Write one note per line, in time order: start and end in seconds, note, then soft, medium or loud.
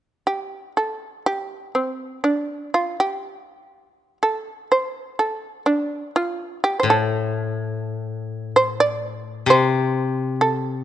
0.27 0.71 G4 medium
0.77 1.22 A4 soft
1.26 1.71 G4 medium
1.75 2.20 C4 soft
2.24 2.69 D4 medium
2.74 2.96 F4 medium
3.00 4.17 G4 medium
4.23 4.67 A4 medium
4.72 5.15 C5 medium
5.19 5.62 A4 medium
5.66 6.10 D4 medium
6.16 6.59 F4 medium
6.64 6.78 G4 medium
6.80 9.46 A2 soft
6.80 6.86 C5 soft
6.90 8.51 A4 medium
8.56 8.77 C5 medium
8.80 9.45 D5 medium
9.46 10.84 C3 medium
9.46 10.35 C5 medium
10.41 10.83 A4 medium